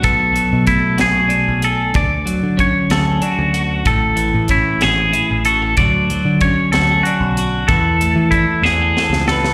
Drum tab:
HH |x-x-x-x-x-x-|x-x-x-x-x-x-|x-x-x-x-x-x-|x-x-x-x-x-x-|
SD |------o-----|------o-----|------o-----|------o-----|
BD |o---o-------|o---o-------|o---o-------|o---o-------|

HH |x-x-x-------|
SD |------o-oooo|
BD |o---o-------|